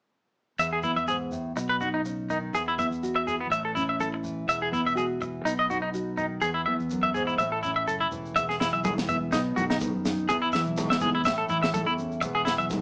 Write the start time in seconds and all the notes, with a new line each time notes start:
0.59 E2 E5, shekere
0.73 G#4
0.83 E3 B3 E4, shekere
0.96 E2 E5, shekere
1.08 G#2 G#4, shekere
1.31 A2, shekere
1.56 B1 B2, muted clean electric guitar stroke, shekere
1.69 B4
1.81 D#4 F#4, shekere
1.94 D#4
2.05 C#3, shekere
2.30 D#3 D#4, shekere
2.53 E2 G#4, shekere
2.68 E4
2.77 E3 B3 E5, shekere
2.90 E2, shekere
3.03 F#4, shekere
3.16 E5
3.26 E3 G#4, shekere
3.41 B3
3.50 A1 E5, muted nylon-string guitar stroke, shekere
3.65 A4
3.75 C#4 E4, shekere
3.89 E5
4.00 E4 A4, shekere
4.14 muted clean electric guitar stroke
4.23 E3, shekere
4.47 E1 E2 E5, shekere
4.62 G#4
4.72 E2 B3 E4, shekere
4.85 E1 E5, shekere
4.95 F#4 G#4, shekere
5.20 E3, muted clean electric guitar stroke, shekere
5.45 B1 B2 D#4, shekere
5.59 D#5
5.70 D#4 F#4, shekere
5.82 D#4
5.94 F#4, shekere
6.17 D#3 D#4, shekere
6.42 E2 G#4, shekere
6.54 E4
6.66 E3 B3 E5
6.80 E2, shekere
6.90 F#2, shekere
7.03 E5
7.14 G#2 G#4, shekere
7.27 E4, shekere
7.38 A1 A2 E5, shekere
7.52 A4
7.63 C#4 E4, shekere
7.76 E5
7.87 F#1 A4, shekere
8.01 E4
8.11 E1 E3, shekere
8.25 shekere
8.35 E1 E2 E5, kick, muted conga, shekere
8.49 G#4, snare
8.60 E3 E4, snare, shekere
8.72 B1 E5, shekere
8.84 G#3 G#4, kick, high conga, shekere
8.97 E1, snare
9.09 B3 E5, muted conga, shekere
9.32 B1 B2 D#4, kick, snare, muted conga, shekere
9.56 B1 D#3 F#4, muted conga, high conga, shekere
9.70 D#4, snare
9.80 B3, kick, high conga, shekere
9.94 F#2
10.05 D#4, snare, shekere
10.18 shekere
10.29 E2 G#4, kick, muted conga, shekere
10.42 E4
10.52 E3 E5, snare, shekere
10.66 B1, shekere
10.77 G#3, kick, snare, high conga, shekere
10.89 E2 E5, snare
11.00 B3 G#4, muted conga, high conga, low conga, shekere
11.15 E4
11.24 A1 A2 E5, kick, snare, muted conga, shekere
11.38 A4
11.49 A1 E3 E4, muted conga, shekere
11.63 E5, snare
11.74 A3 A4, kick, high conga, shekere
11.86 E2 E4
11.98 C#4, shekere
12.12 shekere
12.21 E1 E2, muted clean electric guitar stroke, kick, muted conga, shekere
12.35 G#4
12.45 E3 E4, snare, shekere
12.58 B1 E5, shekere
12.70 G#3, kick, snare, high conga, shekere